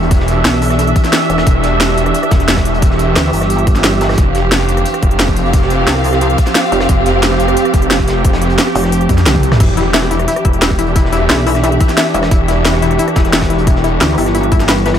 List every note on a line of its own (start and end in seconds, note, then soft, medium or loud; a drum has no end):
0.00 0.44 E1 loud
0.00 4.14 E3 medium
0.00 4.14 D4 medium
0.00 5.04 D4 medium
0.00 9.56 G4 medium
0.00 14.99 G4 medium
0.00 4.18 E5 medium
0.00 closed hi-hat soft
0.11 kick loud
0.11 closed hi-hat medium
0.20 snare soft
0.28 closed hi-hat medium
0.45 0.94 B1 medium
0.45 snare loud
0.45 closed hi-hat medium
0.53 cross-stick soft
0.62 closed hi-hat medium
0.62 open hi-hat medium
0.70 cross-stick soft
0.70 snare soft
0.70 closed hi-hat soft
0.79 closed hi-hat loud
0.87 closed hi-hat soft
0.96 kick loud
0.96 closed hi-hat medium
1.04 snare soft
1.04 closed hi-hat soft
1.13 snare loud
1.13 closed hi-hat medium
1.30 1.45 E1 medium
1.30 closed hi-hat medium
1.38 cross-stick medium
1.38 snare loud
1.38 closed hi-hat medium
1.47 1.96 E1 loud
1.47 kick loud
1.47 closed hi-hat loud
1.47 closed hi-hat medium
1.63 snare medium
1.63 closed hi-hat medium
1.80 snare loud
1.80 closed hi-hat loud
1.80 closed hi-hat medium
1.89 cross-stick soft
1.89 snare soft
1.97 2.13 E1 loud
1.97 closed hi-hat medium
2.06 cross-stick soft
2.06 closed hi-hat soft
2.14 closed hi-hat medium
2.23 cross-stick soft
2.23 closed hi-hat soft
2.31 3.15 E1 loud
2.31 kick loud
2.31 snare loud
2.31 closed hi-hat medium
2.40 snare soft
2.40 closed hi-hat soft
2.48 snare loud
2.48 closed hi-hat medium
2.56 kick medium
2.56 cross-stick soft
2.56 snare loud
2.56 closed hi-hat medium
2.65 snare soft
2.65 closed hi-hat medium
2.74 closed hi-hat medium
2.82 kick loud
2.82 closed hi-hat medium
2.91 snare soft
2.99 closed hi-hat medium
3.16 3.32 D2 medium
3.16 snare loud
3.16 closed hi-hat medium
3.25 cross-stick soft
3.33 4.17 G1 loud
3.33 closed hi-hat medium
3.33 open hi-hat medium
3.42 cross-stick soft
3.42 snare soft
3.42 closed hi-hat soft
3.50 closed hi-hat medium
3.58 closed hi-hat soft
3.67 kick loud
3.67 closed hi-hat medium
3.75 snare soft
3.75 closed hi-hat soft
3.84 snare loud
3.84 closed hi-hat medium
4.01 snare loud
4.01 closed hi-hat medium
4.09 cross-stick medium
4.09 snare medium
4.09 closed hi-hat medium
4.13 snare medium
4.13 closed hi-hat medium
4.17 4.67 F1 loud
4.17 9.56 F3 medium
4.17 9.60 C4 medium
4.17 9.56 C4 medium
4.17 kick loud
4.17 closed hi-hat medium
4.25 9.60 F5 medium
4.35 snare soft
4.35 closed hi-hat medium
4.51 snare loud
4.51 closed hi-hat medium
4.60 cross-stick soft
4.60 snare soft
4.68 4.84 F1 loud
4.68 closed hi-hat medium
4.77 cross-stick soft
4.77 closed hi-hat soft
4.86 closed hi-hat medium
4.86 closed hi-hat loud
4.94 cross-stick soft
4.94 closed hi-hat soft
5.03 5.86 F1 loud
5.03 kick loud
5.03 closed hi-hat medium
5.11 closed hi-hat soft
5.19 snare loud
5.19 closed hi-hat medium
5.28 kick medium
5.28 cross-stick soft
5.28 closed hi-hat soft
5.36 closed hi-hat medium
5.45 closed hi-hat soft
5.53 kick loud
5.53 closed hi-hat medium
5.62 snare soft
5.70 closed hi-hat medium
5.87 6.37 C2 loud
5.87 snare loud
5.87 closed hi-hat medium
5.96 cross-stick soft
6.03 closed hi-hat medium
6.03 open hi-hat medium
6.13 cross-stick soft
6.13 snare medium
6.13 closed hi-hat soft
6.21 closed hi-hat medium
6.30 closed hi-hat soft
6.38 kick loud
6.38 closed hi-hat medium
6.47 snare soft
6.47 closed hi-hat soft
6.54 snare loud
6.54 closed hi-hat medium
6.64 closed hi-hat soft
6.72 6.88 F1 loud
6.72 closed hi-hat medium
6.80 cross-stick medium
6.80 snare loud
6.80 closed hi-hat medium
6.89 7.39 F1 loud
6.89 kick loud
6.89 closed hi-hat medium
6.89 closed hi-hat loud
7.06 snare soft
7.06 closed hi-hat medium
7.23 snare loud
7.23 closed hi-hat medium
7.31 cross-stick soft
7.31 snare soft
7.39 7.55 F1 loud
7.39 closed hi-hat medium
7.48 cross-stick soft
7.48 closed hi-hat soft
7.57 closed hi-hat medium
7.57 closed hi-hat loud
7.65 cross-stick soft
7.65 closed hi-hat soft
7.74 8.57 F1 loud
7.74 kick loud
7.74 closed hi-hat medium
7.82 closed hi-hat soft
7.91 snare loud
7.91 closed hi-hat medium
7.99 kick medium
7.99 cross-stick soft
8.08 snare loud
8.08 closed hi-hat medium
8.25 kick loud
8.25 closed hi-hat loud
8.25 closed hi-hat medium
8.33 snare loud
8.33 closed hi-hat medium
8.42 snare soft
8.42 closed hi-hat medium
8.50 closed hi-hat medium
8.58 snare loud
8.58 closed hi-hat loud
8.67 cross-stick soft
8.75 9.08 F1 medium
8.75 closed hi-hat medium
8.75 open hi-hat medium
8.84 cross-stick soft
8.84 snare medium
8.84 closed hi-hat soft
8.92 closed hi-hat loud
8.92 closed hi-hat medium
9.01 closed hi-hat soft
9.09 9.25 F2 loud
9.09 kick loud
9.09 closed hi-hat medium
9.09 high tom medium
9.17 snare soft
9.17 closed hi-hat soft
9.26 9.59 C2 loud
9.26 snare loud
9.26 closed hi-hat medium
9.26 closed hi-hat loud
9.26 mid tom medium
9.35 kick medium
9.35 closed hi-hat soft
9.35 mid tom medium
9.43 closed hi-hat medium
9.52 cross-stick medium
9.52 snare loud
9.52 closed hi-hat medium
9.52 mid tom medium
9.60 10.10 E1 loud
9.60 14.99 E3 medium
9.60 14.99 D4 medium
9.60 9.69 E4 medium
9.60 14.99 G4 medium
9.60 kick loud
9.60 closed hi-hat medium
9.60 crash medium
9.77 9.86 E4 medium
9.77 snare soft
9.77 closed hi-hat medium
9.86 14.99 E5 medium
9.94 9.99 E4 medium
9.94 snare loud
9.94 closed hi-hat medium
9.94 closed hi-hat loud
10.02 cross-stick soft
10.02 snare soft
10.11 10.27 E1 loud
10.11 10.20 E4 medium
10.11 closed hi-hat medium
10.19 cross-stick soft
10.19 closed hi-hat soft
10.28 10.37 E4 medium
10.28 closed hi-hat loud
10.36 cross-stick medium
10.36 closed hi-hat soft
10.45 11.28 E1 loud
10.45 10.50 E4 medium
10.45 kick loud
10.45 closed hi-hat medium
10.53 closed hi-hat soft
10.62 10.70 E4 medium
10.62 snare loud
10.62 closed hi-hat loud
10.62 closed hi-hat medium
10.70 kick medium
10.70 cross-stick soft
10.79 10.87 E4 medium
10.79 closed hi-hat medium
10.86 closed hi-hat soft
10.96 11.01 E4 medium
10.96 kick loud
10.96 closed hi-hat medium
11.05 snare soft
11.13 11.21 E4 medium
11.13 closed hi-hat medium
11.30 11.79 B1 loud
11.30 11.38 E4 medium
11.30 snare loud
11.30 closed hi-hat medium
11.38 cross-stick soft
11.47 11.52 E4 medium
11.47 closed hi-hat medium
11.47 open hi-hat medium
11.55 cross-stick soft
11.55 snare soft
11.55 closed hi-hat soft
11.64 11.72 E4 medium
11.64 closed hi-hat loud
11.64 closed hi-hat medium
11.72 closed hi-hat soft
11.80 11.89 E4 medium
11.80 kick loud
11.80 closed hi-hat medium
11.89 snare soft
11.89 closed hi-hat soft
11.97 12.03 E4 medium
11.97 snare loud
11.97 closed hi-hat loud
11.97 closed hi-hat medium
12.06 closed hi-hat soft
12.14 12.30 E1 loud
12.14 12.23 E4 medium
12.14 closed hi-hat medium
12.22 cross-stick medium
12.22 snare loud
12.22 closed hi-hat medium
12.31 12.81 E1 loud
12.31 12.40 E4 medium
12.31 kick loud
12.31 closed hi-hat medium
12.31 closed hi-hat loud
12.48 12.53 E4 medium
12.48 snare soft
12.48 closed hi-hat medium
12.65 12.74 E4 medium
12.65 snare loud
12.65 closed hi-hat medium
12.65 closed hi-hat loud
12.74 cross-stick soft
12.74 snare soft
12.82 12.98 E1 loud
12.82 12.91 E4 medium
12.82 closed hi-hat medium
12.91 cross-stick soft
12.91 closed hi-hat soft
12.99 13.04 E4 medium
12.99 closed hi-hat medium
12.99 closed hi-hat loud
13.08 cross-stick soft
13.08 closed hi-hat soft
13.16 14.00 E1 loud
13.16 13.25 E4 medium
13.16 kick loud
13.16 snare loud
13.16 closed hi-hat medium
13.25 snare soft
13.25 closed hi-hat soft
13.33 13.42 E4 medium
13.33 snare loud
13.33 closed hi-hat medium
13.42 kick medium
13.42 cross-stick soft
13.42 snare loud
13.42 closed hi-hat medium
13.50 13.55 E4 medium
13.50 snare soft
13.50 closed hi-hat medium
13.58 closed hi-hat medium
13.67 13.76 E4 medium
13.67 kick loud
13.67 closed hi-hat medium
13.76 snare soft
13.84 13.93 E4 medium
13.84 closed hi-hat medium
14.00 14.17 D2 loud
14.00 14.06 E4 medium
14.00 snare loud
14.00 closed hi-hat medium
14.09 cross-stick soft
14.18 14.99 G1 loud
14.18 14.26 E4 medium
14.18 closed hi-hat medium
14.18 open hi-hat medium
14.26 cross-stick soft
14.26 snare medium
14.26 closed hi-hat soft
14.35 14.43 E4 medium
14.35 closed hi-hat medium
14.43 closed hi-hat soft
14.52 14.65 E4 loud
14.52 kick loud
14.52 closed hi-hat medium
14.60 snare soft
14.60 closed hi-hat soft
14.68 14.74 B4 medium
14.68 snare loud
14.68 closed hi-hat medium
14.78 closed hi-hat soft
14.86 14.94 B4 medium
14.86 snare loud
14.86 closed hi-hat medium
14.93 cross-stick medium
14.93 snare medium
14.93 closed hi-hat medium